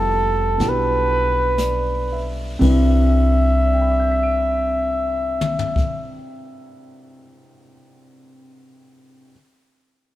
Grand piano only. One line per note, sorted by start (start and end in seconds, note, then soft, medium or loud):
0.00 2.60 G3 soft
0.00 0.56 B3 soft
0.00 0.58 E4 soft
0.00 2.61 F4 soft
0.00 2.61 A4 medium
0.57 2.60 B3 soft
0.57 2.59 D4 soft
0.57 2.59 E4 soft
0.57 2.62 G4 soft
1.09 1.80 B4 soft
1.59 2.40 D5 soft
2.12 2.85 E5 soft
2.59 6.11 C3 medium
2.59 6.11 C4 soft
2.59 6.13 D4 soft
2.59 6.13 E4 soft
2.59 6.14 B4 medium
3.66 7.14 D5 soft
3.73 7.22 G5 soft
3.81 7.30 B5 soft
3.91 7.39 D6 soft
4.00 7.48 G6 soft
4.11 7.59 B6 soft
4.23 7.71 D7 soft